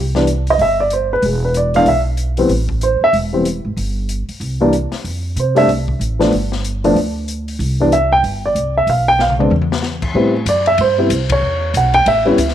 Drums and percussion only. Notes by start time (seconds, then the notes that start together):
0.15 snare
0.27 closed hi-hat
0.47 open hi-hat
0.59 open hi-hat
0.90 closed hi-hat
1.23 open hi-hat
1.54 closed hi-hat
1.74 open hi-hat
1.86 open hi-hat
2.17 closed hi-hat
2.37 open hi-hat
2.49 open hi-hat
2.69 kick
2.81 closed hi-hat
3.13 open hi-hat
3.45 closed hi-hat
3.77 open hi-hat
4.09 closed hi-hat
4.29 open hi-hat
4.41 open hi-hat
4.73 closed hi-hat
4.92 snare, open hi-hat
5.05 open hi-hat
5.37 closed hi-hat
5.56 open hi-hat
5.69 open hi-hat
5.88 kick
6.01 closed hi-hat
6.21 snare, open hi-hat
6.32 open hi-hat
6.52 snare
6.64 closed hi-hat
6.84 open hi-hat
6.96 open hi-hat
7.28 closed hi-hat
7.48 open hi-hat
7.60 open hi-hat
7.92 closed hi-hat
8.24 open hi-hat
8.56 closed hi-hat
8.87 open hi-hat
9.19 snare
9.30 mid tom
9.40 mid tom
9.51 high tom
9.62 high tom
9.72 snare
9.83 snare
10.02 kick, crash
10.46 hi-hat pedal, ride
10.66 ride
10.78 ride
11.10 hi-hat pedal, ride
11.30 kick, ride
11.74 hi-hat pedal, ride
11.94 ride
12.06 ride
12.38 hi-hat pedal, ride
12.48 snare